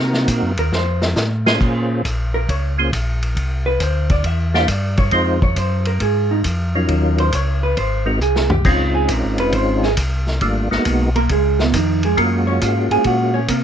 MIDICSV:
0, 0, Header, 1, 5, 480
1, 0, Start_track
1, 0, Key_signature, -5, "minor"
1, 0, Tempo, 440205
1, 1750, Time_signature, 4, 2, 24, 8
1, 14870, End_track
2, 0, Start_track
2, 0, Title_t, "Hollow-body jazz guitar"
2, 0, Program_c, 0, 26
2, 644, Note_on_c, 0, 70, 89
2, 791, Note_off_c, 0, 70, 0
2, 814, Note_on_c, 0, 72, 89
2, 1117, Note_off_c, 0, 72, 0
2, 2555, Note_on_c, 0, 70, 83
2, 2705, Note_off_c, 0, 70, 0
2, 2725, Note_on_c, 0, 73, 83
2, 2915, Note_off_c, 0, 73, 0
2, 3991, Note_on_c, 0, 71, 89
2, 4144, Note_off_c, 0, 71, 0
2, 4159, Note_on_c, 0, 72, 73
2, 4470, Note_off_c, 0, 72, 0
2, 4484, Note_on_c, 0, 74, 86
2, 4631, Note_off_c, 0, 74, 0
2, 4646, Note_on_c, 0, 76, 82
2, 4953, Note_off_c, 0, 76, 0
2, 4964, Note_on_c, 0, 77, 94
2, 5120, Note_off_c, 0, 77, 0
2, 5120, Note_on_c, 0, 74, 73
2, 5431, Note_off_c, 0, 74, 0
2, 5435, Note_on_c, 0, 73, 92
2, 5587, Note_off_c, 0, 73, 0
2, 5609, Note_on_c, 0, 72, 79
2, 5916, Note_off_c, 0, 72, 0
2, 5924, Note_on_c, 0, 73, 93
2, 6072, Note_off_c, 0, 73, 0
2, 6081, Note_on_c, 0, 72, 78
2, 6392, Note_off_c, 0, 72, 0
2, 6401, Note_on_c, 0, 70, 87
2, 6551, Note_off_c, 0, 70, 0
2, 6567, Note_on_c, 0, 68, 68
2, 6876, Note_off_c, 0, 68, 0
2, 6882, Note_on_c, 0, 63, 77
2, 6974, Note_off_c, 0, 63, 0
2, 7852, Note_on_c, 0, 72, 81
2, 7998, Note_off_c, 0, 72, 0
2, 8015, Note_on_c, 0, 73, 88
2, 8317, Note_off_c, 0, 73, 0
2, 8321, Note_on_c, 0, 71, 83
2, 8472, Note_off_c, 0, 71, 0
2, 8478, Note_on_c, 0, 72, 80
2, 8806, Note_off_c, 0, 72, 0
2, 8806, Note_on_c, 0, 70, 89
2, 8955, Note_off_c, 0, 70, 0
2, 8962, Note_on_c, 0, 68, 70
2, 9275, Note_off_c, 0, 68, 0
2, 9283, Note_on_c, 0, 67, 89
2, 9434, Note_off_c, 0, 67, 0
2, 9449, Note_on_c, 0, 65, 77
2, 9755, Note_on_c, 0, 68, 73
2, 9759, Note_off_c, 0, 65, 0
2, 9927, Note_off_c, 0, 68, 0
2, 9927, Note_on_c, 0, 70, 72
2, 10238, Note_off_c, 0, 70, 0
2, 10248, Note_on_c, 0, 71, 91
2, 10397, Note_off_c, 0, 71, 0
2, 10411, Note_on_c, 0, 72, 87
2, 10718, Note_on_c, 0, 68, 89
2, 10720, Note_off_c, 0, 72, 0
2, 10813, Note_off_c, 0, 68, 0
2, 12165, Note_on_c, 0, 58, 73
2, 12168, Note_on_c, 0, 70, 84
2, 12315, Note_off_c, 0, 70, 0
2, 12316, Note_off_c, 0, 58, 0
2, 12336, Note_on_c, 0, 68, 75
2, 12344, Note_on_c, 0, 56, 59
2, 12641, Note_off_c, 0, 68, 0
2, 12645, Note_off_c, 0, 56, 0
2, 12658, Note_on_c, 0, 59, 44
2, 12667, Note_on_c, 0, 47, 35
2, 12801, Note_off_c, 0, 59, 0
2, 12806, Note_off_c, 0, 47, 0
2, 12813, Note_on_c, 0, 63, 80
2, 12819, Note_on_c, 0, 51, 61
2, 13119, Note_off_c, 0, 63, 0
2, 13122, Note_off_c, 0, 51, 0
2, 13135, Note_on_c, 0, 56, 66
2, 13140, Note_on_c, 0, 68, 74
2, 13280, Note_off_c, 0, 56, 0
2, 13280, Note_off_c, 0, 68, 0
2, 13283, Note_on_c, 0, 70, 79
2, 13293, Note_on_c, 0, 58, 59
2, 13594, Note_off_c, 0, 70, 0
2, 13599, Note_off_c, 0, 58, 0
2, 13599, Note_on_c, 0, 73, 91
2, 13610, Note_on_c, 0, 61, 69
2, 13751, Note_off_c, 0, 73, 0
2, 13756, Note_off_c, 0, 61, 0
2, 13765, Note_on_c, 0, 65, 61
2, 13770, Note_on_c, 0, 77, 71
2, 14075, Note_off_c, 0, 65, 0
2, 14075, Note_off_c, 0, 77, 0
2, 14082, Note_on_c, 0, 68, 82
2, 14084, Note_on_c, 0, 80, 98
2, 14231, Note_off_c, 0, 80, 0
2, 14233, Note_off_c, 0, 68, 0
2, 14236, Note_on_c, 0, 66, 66
2, 14239, Note_on_c, 0, 78, 71
2, 14546, Note_on_c, 0, 73, 87
2, 14549, Note_off_c, 0, 78, 0
2, 14550, Note_off_c, 0, 66, 0
2, 14557, Note_on_c, 0, 61, 71
2, 14702, Note_off_c, 0, 73, 0
2, 14705, Note_on_c, 0, 70, 83
2, 14708, Note_off_c, 0, 61, 0
2, 14712, Note_on_c, 0, 58, 67
2, 14870, Note_off_c, 0, 58, 0
2, 14870, Note_off_c, 0, 70, 0
2, 14870, End_track
3, 0, Start_track
3, 0, Title_t, "Tonewheel organ"
3, 0, Program_c, 1, 16
3, 0, Note_on_c, 1, 58, 69
3, 0, Note_on_c, 1, 60, 62
3, 0, Note_on_c, 1, 63, 58
3, 0, Note_on_c, 1, 66, 60
3, 0, Note_on_c, 1, 70, 70
3, 569, Note_off_c, 1, 58, 0
3, 570, Note_off_c, 1, 60, 0
3, 570, Note_off_c, 1, 63, 0
3, 573, Note_off_c, 1, 66, 0
3, 575, Note_off_c, 1, 70, 0
3, 1595, Note_on_c, 1, 58, 71
3, 1597, Note_on_c, 1, 61, 69
3, 1601, Note_on_c, 1, 65, 64
3, 1602, Note_on_c, 1, 68, 64
3, 1608, Note_on_c, 1, 72, 83
3, 2199, Note_off_c, 1, 58, 0
3, 2200, Note_off_c, 1, 61, 0
3, 2202, Note_off_c, 1, 65, 0
3, 2202, Note_off_c, 1, 68, 0
3, 2205, Note_off_c, 1, 72, 0
3, 3034, Note_on_c, 1, 61, 59
3, 3036, Note_on_c, 1, 58, 61
3, 3041, Note_on_c, 1, 65, 59
3, 3042, Note_on_c, 1, 68, 59
3, 3046, Note_on_c, 1, 72, 72
3, 3174, Note_off_c, 1, 61, 0
3, 3175, Note_off_c, 1, 58, 0
3, 3177, Note_off_c, 1, 65, 0
3, 3178, Note_off_c, 1, 68, 0
3, 3180, Note_off_c, 1, 72, 0
3, 4953, Note_on_c, 1, 58, 66
3, 4956, Note_on_c, 1, 62, 63
3, 4958, Note_on_c, 1, 64, 67
3, 4964, Note_on_c, 1, 67, 62
3, 4965, Note_on_c, 1, 72, 77
3, 5095, Note_off_c, 1, 58, 0
3, 5096, Note_off_c, 1, 62, 0
3, 5097, Note_off_c, 1, 64, 0
3, 5100, Note_off_c, 1, 67, 0
3, 5100, Note_off_c, 1, 72, 0
3, 5584, Note_on_c, 1, 56, 56
3, 5586, Note_on_c, 1, 63, 54
3, 5589, Note_on_c, 1, 60, 56
3, 5592, Note_on_c, 1, 65, 56
3, 5597, Note_on_c, 1, 72, 65
3, 5880, Note_off_c, 1, 56, 0
3, 5882, Note_off_c, 1, 63, 0
3, 5883, Note_off_c, 1, 60, 0
3, 5884, Note_off_c, 1, 65, 0
3, 5887, Note_off_c, 1, 72, 0
3, 7360, Note_on_c, 1, 54, 64
3, 7364, Note_on_c, 1, 61, 56
3, 7364, Note_on_c, 1, 63, 59
3, 7368, Note_on_c, 1, 65, 55
3, 7370, Note_on_c, 1, 70, 72
3, 7965, Note_off_c, 1, 54, 0
3, 7967, Note_off_c, 1, 63, 0
3, 7968, Note_off_c, 1, 61, 0
3, 7969, Note_off_c, 1, 65, 0
3, 7971, Note_off_c, 1, 70, 0
3, 8784, Note_on_c, 1, 56, 58
3, 8788, Note_on_c, 1, 60, 53
3, 8790, Note_on_c, 1, 63, 55
3, 8793, Note_on_c, 1, 66, 57
3, 8796, Note_on_c, 1, 70, 69
3, 8933, Note_off_c, 1, 56, 0
3, 8935, Note_off_c, 1, 60, 0
3, 8936, Note_off_c, 1, 63, 0
3, 8938, Note_off_c, 1, 66, 0
3, 8939, Note_off_c, 1, 70, 0
3, 9431, Note_on_c, 1, 56, 57
3, 9432, Note_on_c, 1, 60, 53
3, 9438, Note_on_c, 1, 61, 52
3, 9440, Note_on_c, 1, 63, 55
3, 9442, Note_on_c, 1, 65, 68
3, 10782, Note_off_c, 1, 56, 0
3, 10783, Note_off_c, 1, 60, 0
3, 10785, Note_off_c, 1, 61, 0
3, 10787, Note_off_c, 1, 63, 0
3, 10788, Note_off_c, 1, 65, 0
3, 11356, Note_on_c, 1, 55, 67
3, 11360, Note_on_c, 1, 58, 57
3, 11361, Note_on_c, 1, 57, 65
3, 11363, Note_on_c, 1, 62, 63
3, 11369, Note_on_c, 1, 65, 73
3, 11649, Note_off_c, 1, 55, 0
3, 11651, Note_off_c, 1, 58, 0
3, 11652, Note_off_c, 1, 57, 0
3, 11653, Note_off_c, 1, 62, 0
3, 11655, Note_off_c, 1, 65, 0
3, 11678, Note_on_c, 1, 56, 65
3, 11681, Note_on_c, 1, 58, 62
3, 11682, Note_on_c, 1, 59, 66
3, 11682, Note_on_c, 1, 63, 62
3, 11692, Note_on_c, 1, 66, 79
3, 12095, Note_off_c, 1, 56, 0
3, 12097, Note_off_c, 1, 58, 0
3, 12097, Note_off_c, 1, 59, 0
3, 12097, Note_off_c, 1, 63, 0
3, 12102, Note_off_c, 1, 66, 0
3, 13271, Note_on_c, 1, 56, 52
3, 13272, Note_on_c, 1, 61, 49
3, 13273, Note_on_c, 1, 58, 52
3, 13275, Note_on_c, 1, 65, 52
3, 13281, Note_on_c, 1, 66, 62
3, 14617, Note_off_c, 1, 56, 0
3, 14618, Note_off_c, 1, 58, 0
3, 14618, Note_off_c, 1, 61, 0
3, 14619, Note_off_c, 1, 65, 0
3, 14622, Note_off_c, 1, 66, 0
3, 14870, End_track
4, 0, Start_track
4, 0, Title_t, "Tonewheel organ"
4, 0, Program_c, 2, 16
4, 0, Note_on_c, 2, 48, 82
4, 294, Note_off_c, 2, 48, 0
4, 302, Note_on_c, 2, 46, 93
4, 458, Note_on_c, 2, 42, 57
4, 462, Note_off_c, 2, 46, 0
4, 625, Note_off_c, 2, 42, 0
4, 632, Note_on_c, 2, 39, 63
4, 780, Note_off_c, 2, 39, 0
4, 781, Note_on_c, 2, 41, 80
4, 1251, Note_off_c, 2, 41, 0
4, 1265, Note_on_c, 2, 45, 87
4, 1733, Note_off_c, 2, 45, 0
4, 1750, Note_on_c, 2, 46, 76
4, 2215, Note_off_c, 2, 46, 0
4, 2229, Note_on_c, 2, 34, 81
4, 2695, Note_off_c, 2, 34, 0
4, 2711, Note_on_c, 2, 37, 79
4, 3176, Note_off_c, 2, 37, 0
4, 3185, Note_on_c, 2, 34, 81
4, 3653, Note_off_c, 2, 34, 0
4, 3668, Note_on_c, 2, 36, 74
4, 4135, Note_off_c, 2, 36, 0
4, 4145, Note_on_c, 2, 38, 84
4, 4614, Note_off_c, 2, 38, 0
4, 4624, Note_on_c, 2, 40, 77
4, 5094, Note_off_c, 2, 40, 0
4, 5105, Note_on_c, 2, 43, 82
4, 5574, Note_off_c, 2, 43, 0
4, 5586, Note_on_c, 2, 41, 76
4, 6055, Note_off_c, 2, 41, 0
4, 6063, Note_on_c, 2, 42, 85
4, 6534, Note_off_c, 2, 42, 0
4, 6547, Note_on_c, 2, 44, 85
4, 7017, Note_off_c, 2, 44, 0
4, 7027, Note_on_c, 2, 41, 82
4, 7497, Note_off_c, 2, 41, 0
4, 7507, Note_on_c, 2, 39, 81
4, 7978, Note_off_c, 2, 39, 0
4, 7994, Note_on_c, 2, 37, 87
4, 8462, Note_off_c, 2, 37, 0
4, 8472, Note_on_c, 2, 32, 81
4, 8941, Note_off_c, 2, 32, 0
4, 8944, Note_on_c, 2, 36, 80
4, 9417, Note_off_c, 2, 36, 0
4, 9426, Note_on_c, 2, 37, 79
4, 9898, Note_off_c, 2, 37, 0
4, 9908, Note_on_c, 2, 34, 87
4, 10069, Note_off_c, 2, 34, 0
4, 10074, Note_on_c, 2, 32, 58
4, 10233, Note_on_c, 2, 29, 56
4, 10237, Note_off_c, 2, 32, 0
4, 10384, Note_off_c, 2, 29, 0
4, 10388, Note_on_c, 2, 32, 78
4, 10859, Note_off_c, 2, 32, 0
4, 10874, Note_on_c, 2, 36, 79
4, 11342, Note_off_c, 2, 36, 0
4, 11353, Note_on_c, 2, 32, 80
4, 11657, Note_off_c, 2, 32, 0
4, 11683, Note_on_c, 2, 32, 42
4, 11761, Note_off_c, 2, 32, 0
4, 11838, Note_on_c, 2, 35, 85
4, 12303, Note_off_c, 2, 35, 0
4, 12319, Note_on_c, 2, 37, 87
4, 12784, Note_off_c, 2, 37, 0
4, 12793, Note_on_c, 2, 41, 85
4, 13260, Note_off_c, 2, 41, 0
4, 13276, Note_on_c, 2, 42, 81
4, 13741, Note_off_c, 2, 42, 0
4, 13756, Note_on_c, 2, 44, 88
4, 14057, Note_off_c, 2, 44, 0
4, 14074, Note_on_c, 2, 44, 37
4, 14153, Note_off_c, 2, 44, 0
4, 14231, Note_on_c, 2, 46, 87
4, 14697, Note_off_c, 2, 46, 0
4, 14703, Note_on_c, 2, 48, 87
4, 14870, Note_off_c, 2, 48, 0
4, 14870, End_track
5, 0, Start_track
5, 0, Title_t, "Drums"
5, 148, Note_on_c, 9, 38, 44
5, 257, Note_off_c, 9, 38, 0
5, 303, Note_on_c, 9, 44, 63
5, 303, Note_on_c, 9, 51, 70
5, 307, Note_on_c, 9, 36, 24
5, 412, Note_off_c, 9, 44, 0
5, 412, Note_off_c, 9, 51, 0
5, 416, Note_off_c, 9, 36, 0
5, 626, Note_on_c, 9, 51, 51
5, 735, Note_off_c, 9, 51, 0
5, 790, Note_on_c, 9, 38, 49
5, 899, Note_off_c, 9, 38, 0
5, 1109, Note_on_c, 9, 38, 61
5, 1218, Note_off_c, 9, 38, 0
5, 1263, Note_on_c, 9, 44, 56
5, 1268, Note_on_c, 9, 38, 71
5, 1372, Note_off_c, 9, 44, 0
5, 1377, Note_off_c, 9, 38, 0
5, 1598, Note_on_c, 9, 38, 92
5, 1707, Note_off_c, 9, 38, 0
5, 1752, Note_on_c, 9, 36, 59
5, 1758, Note_on_c, 9, 49, 55
5, 1861, Note_off_c, 9, 36, 0
5, 1867, Note_off_c, 9, 49, 0
5, 2233, Note_on_c, 9, 36, 21
5, 2234, Note_on_c, 9, 44, 59
5, 2234, Note_on_c, 9, 51, 61
5, 2342, Note_off_c, 9, 36, 0
5, 2343, Note_off_c, 9, 44, 0
5, 2343, Note_off_c, 9, 51, 0
5, 2713, Note_on_c, 9, 36, 22
5, 2715, Note_on_c, 9, 51, 53
5, 2822, Note_off_c, 9, 36, 0
5, 2824, Note_off_c, 9, 51, 0
5, 3191, Note_on_c, 9, 36, 21
5, 3194, Note_on_c, 9, 44, 54
5, 3194, Note_on_c, 9, 51, 66
5, 3300, Note_off_c, 9, 36, 0
5, 3303, Note_off_c, 9, 44, 0
5, 3303, Note_off_c, 9, 51, 0
5, 3517, Note_on_c, 9, 51, 48
5, 3626, Note_off_c, 9, 51, 0
5, 3670, Note_on_c, 9, 36, 18
5, 3671, Note_on_c, 9, 51, 51
5, 3779, Note_off_c, 9, 36, 0
5, 3781, Note_off_c, 9, 51, 0
5, 4144, Note_on_c, 9, 44, 58
5, 4144, Note_on_c, 9, 51, 61
5, 4148, Note_on_c, 9, 36, 18
5, 4253, Note_off_c, 9, 44, 0
5, 4253, Note_off_c, 9, 51, 0
5, 4257, Note_off_c, 9, 36, 0
5, 4466, Note_on_c, 9, 51, 46
5, 4471, Note_on_c, 9, 36, 48
5, 4575, Note_off_c, 9, 51, 0
5, 4580, Note_off_c, 9, 36, 0
5, 4623, Note_on_c, 9, 51, 58
5, 4626, Note_on_c, 9, 36, 17
5, 4732, Note_off_c, 9, 51, 0
5, 4735, Note_off_c, 9, 36, 0
5, 4955, Note_on_c, 9, 38, 49
5, 5064, Note_off_c, 9, 38, 0
5, 5102, Note_on_c, 9, 44, 60
5, 5102, Note_on_c, 9, 51, 72
5, 5107, Note_on_c, 9, 36, 23
5, 5211, Note_off_c, 9, 44, 0
5, 5211, Note_off_c, 9, 51, 0
5, 5216, Note_off_c, 9, 36, 0
5, 5424, Note_on_c, 9, 51, 44
5, 5430, Note_on_c, 9, 36, 59
5, 5533, Note_off_c, 9, 51, 0
5, 5539, Note_off_c, 9, 36, 0
5, 5574, Note_on_c, 9, 51, 51
5, 5585, Note_on_c, 9, 36, 19
5, 5683, Note_off_c, 9, 51, 0
5, 5694, Note_off_c, 9, 36, 0
5, 5912, Note_on_c, 9, 36, 58
5, 6021, Note_off_c, 9, 36, 0
5, 6065, Note_on_c, 9, 44, 58
5, 6065, Note_on_c, 9, 51, 64
5, 6069, Note_on_c, 9, 36, 19
5, 6174, Note_off_c, 9, 44, 0
5, 6174, Note_off_c, 9, 51, 0
5, 6178, Note_off_c, 9, 36, 0
5, 6382, Note_on_c, 9, 51, 48
5, 6491, Note_off_c, 9, 51, 0
5, 6543, Note_on_c, 9, 51, 57
5, 6550, Note_on_c, 9, 36, 18
5, 6652, Note_off_c, 9, 51, 0
5, 6659, Note_off_c, 9, 36, 0
5, 7024, Note_on_c, 9, 44, 52
5, 7024, Note_on_c, 9, 51, 66
5, 7031, Note_on_c, 9, 36, 24
5, 7133, Note_off_c, 9, 44, 0
5, 7133, Note_off_c, 9, 51, 0
5, 7140, Note_off_c, 9, 36, 0
5, 7507, Note_on_c, 9, 51, 52
5, 7512, Note_on_c, 9, 36, 17
5, 7616, Note_off_c, 9, 51, 0
5, 7621, Note_off_c, 9, 36, 0
5, 7832, Note_on_c, 9, 51, 42
5, 7941, Note_off_c, 9, 51, 0
5, 7986, Note_on_c, 9, 44, 51
5, 7986, Note_on_c, 9, 51, 68
5, 7994, Note_on_c, 9, 36, 18
5, 8095, Note_off_c, 9, 44, 0
5, 8095, Note_off_c, 9, 51, 0
5, 8103, Note_off_c, 9, 36, 0
5, 8470, Note_on_c, 9, 51, 57
5, 8474, Note_on_c, 9, 36, 19
5, 8579, Note_off_c, 9, 51, 0
5, 8583, Note_off_c, 9, 36, 0
5, 8952, Note_on_c, 9, 44, 60
5, 9061, Note_off_c, 9, 44, 0
5, 9112, Note_on_c, 9, 38, 53
5, 9221, Note_off_c, 9, 38, 0
5, 9265, Note_on_c, 9, 43, 80
5, 9374, Note_off_c, 9, 43, 0
5, 9427, Note_on_c, 9, 49, 62
5, 9431, Note_on_c, 9, 36, 67
5, 9536, Note_off_c, 9, 49, 0
5, 9540, Note_off_c, 9, 36, 0
5, 9905, Note_on_c, 9, 44, 59
5, 9905, Note_on_c, 9, 51, 63
5, 9911, Note_on_c, 9, 36, 21
5, 10014, Note_off_c, 9, 44, 0
5, 10014, Note_off_c, 9, 51, 0
5, 10020, Note_off_c, 9, 36, 0
5, 10227, Note_on_c, 9, 51, 51
5, 10336, Note_off_c, 9, 51, 0
5, 10385, Note_on_c, 9, 51, 55
5, 10392, Note_on_c, 9, 36, 21
5, 10494, Note_off_c, 9, 51, 0
5, 10501, Note_off_c, 9, 36, 0
5, 10719, Note_on_c, 9, 38, 34
5, 10828, Note_off_c, 9, 38, 0
5, 10869, Note_on_c, 9, 44, 62
5, 10869, Note_on_c, 9, 51, 77
5, 10876, Note_on_c, 9, 36, 22
5, 10978, Note_off_c, 9, 44, 0
5, 10978, Note_off_c, 9, 51, 0
5, 10985, Note_off_c, 9, 36, 0
5, 11196, Note_on_c, 9, 38, 35
5, 11305, Note_off_c, 9, 38, 0
5, 11349, Note_on_c, 9, 51, 51
5, 11357, Note_on_c, 9, 36, 22
5, 11458, Note_off_c, 9, 51, 0
5, 11466, Note_off_c, 9, 36, 0
5, 11687, Note_on_c, 9, 38, 36
5, 11796, Note_off_c, 9, 38, 0
5, 11832, Note_on_c, 9, 44, 45
5, 11832, Note_on_c, 9, 51, 65
5, 11840, Note_on_c, 9, 36, 23
5, 11941, Note_off_c, 9, 44, 0
5, 11941, Note_off_c, 9, 51, 0
5, 11949, Note_off_c, 9, 36, 0
5, 12165, Note_on_c, 9, 51, 49
5, 12274, Note_off_c, 9, 51, 0
5, 12314, Note_on_c, 9, 51, 64
5, 12320, Note_on_c, 9, 36, 22
5, 12423, Note_off_c, 9, 51, 0
5, 12429, Note_off_c, 9, 36, 0
5, 12641, Note_on_c, 9, 38, 53
5, 12750, Note_off_c, 9, 38, 0
5, 12797, Note_on_c, 9, 44, 71
5, 12797, Note_on_c, 9, 51, 72
5, 12799, Note_on_c, 9, 36, 28
5, 12906, Note_off_c, 9, 44, 0
5, 12906, Note_off_c, 9, 51, 0
5, 12908, Note_off_c, 9, 36, 0
5, 13117, Note_on_c, 9, 51, 49
5, 13226, Note_off_c, 9, 51, 0
5, 13276, Note_on_c, 9, 51, 56
5, 13278, Note_on_c, 9, 36, 16
5, 13385, Note_off_c, 9, 51, 0
5, 13388, Note_off_c, 9, 36, 0
5, 13755, Note_on_c, 9, 44, 64
5, 13755, Note_on_c, 9, 51, 63
5, 13756, Note_on_c, 9, 36, 20
5, 13864, Note_off_c, 9, 44, 0
5, 13864, Note_off_c, 9, 51, 0
5, 13865, Note_off_c, 9, 36, 0
5, 14077, Note_on_c, 9, 51, 47
5, 14186, Note_off_c, 9, 51, 0
5, 14221, Note_on_c, 9, 51, 55
5, 14231, Note_on_c, 9, 36, 27
5, 14330, Note_off_c, 9, 51, 0
5, 14340, Note_off_c, 9, 36, 0
5, 14702, Note_on_c, 9, 44, 61
5, 14702, Note_on_c, 9, 51, 74
5, 14709, Note_on_c, 9, 36, 22
5, 14811, Note_off_c, 9, 44, 0
5, 14811, Note_off_c, 9, 51, 0
5, 14818, Note_off_c, 9, 36, 0
5, 14870, End_track
0, 0, End_of_file